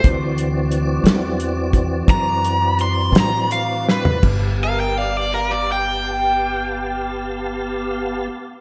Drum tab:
CC |------------------------|x-----------------------|
HH |x-x-x-x-x-x-x-x-x-x-x---|------------------------|
SD |------o-----------o---o-|------------------------|
FT |-----------------------o|------------------------|
BD |o---------o-o-----------|o-----------------------|